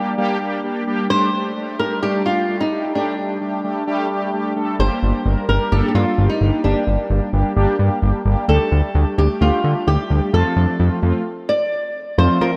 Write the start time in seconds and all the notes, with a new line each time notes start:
Already playing: G3 A#3 D4 G4
0.18 G3 A#3 D4 G4
0.41 G3 A#3 D4 G4
0.64 G3 A#3 D4 G4
0.87 G3 A#3 D4 G4
1.10 G3 A3 D4 G4 C5
1.33 G3 A3 D4 G4
1.56 G3 A3 D4 G4
1.79 G3 A3 D4 G4 A#4
2.03 G3 A3 D4 G4
2.26 G3 A3 D4 F4 G4
2.49 G3 A3 D4 G4
2.60 D#4
2.72 G3 A3 D4 G4
2.95 G3 A3 D4 G4
3.18 G3 A3 D4 G4
3.41 G3 A3 D4 G4
3.64 G3 A3 D4 G4
3.87 G3 A3 D4 G4
4.10 G3 A3 D4 G4
4.33 G3 A3 D4 G4
4.56 G3 A3 D4 A4
4.79 G1 G3 A#3 D4 G4 C5
5.03 G1 G3 A#3 D4 G4
5.26 G1 G3 A#3 D4 A#4
5.49 G1 G3 A#3 D4 G4 A#4
5.72 G1 G3 A#3 D4 G4 A4
5.88 G4
5.95 G2 G3 A#3 D4 F4 A4
6.18 G1 G3 A#3 D4 G4
6.29 D#4
6.41 G1 G3 A#3 D4 G4
6.64 G1 G3 A#3 D4 G4
6.87 G1 G3 A#3 D4 G4
7.10 G1 G3 A#3 D4 G4
7.33 G1 G3 A#3 D4 G4
7.56 G1 G3 A#3 D4 G4
7.79 G2 G3 A#3 D4 G4
8.02 G1 G3 A#3 D4 G4
8.25 G1 G3 A#3 D4 G4
8.48 D2 G3 A3 D4 G4 A4
8.72 D2 G3 A3 D4 G4
8.95 D2 G3 A3 D4 G4
9.18 D2 G3 A3 D4 G4
9.41 D2 G3 A3 D4 F4 G4
9.64 D3 G3 A3 D4 G4
9.87 D2 G3 A3 D4 G4
10.10 D2 G3 A3 D4 G4
10.33 F2 F3 A3 C4 F4 A4
10.56 F2 F3 A3 C4 D4
10.79 F2 F3 A3 C4 F4
11.02 F2 F3 A3 C4 F4
11.49 D5
12.18 F2 F3 A3 C4 F4 C5
12.41 F3 A3 F4 A#4